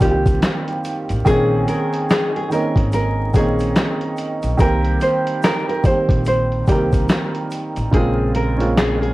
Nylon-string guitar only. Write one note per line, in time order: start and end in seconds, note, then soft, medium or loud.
0.02 0.39 G4 medium
1.27 1.64 G#4 loud
1.69 2.06 A#4 medium
2.10 2.32 G#4 medium
2.36 2.50 G#4 medium
2.52 2.89 A#4 medium
2.94 3.31 A#4 medium
3.36 4.56 G#4 medium
4.60 4.97 A#4 medium
5.02 5.39 C5 medium
5.44 5.66 A#4 medium
5.69 5.83 A#4 medium
5.86 6.23 C5 medium
6.28 6.64 C5 medium
6.69 7.06 G4 medium
7.94 8.31 G#4 medium
8.36 8.73 A#4 medium
8.77 8.99 G#4 medium
9.02 9.14 G#4 medium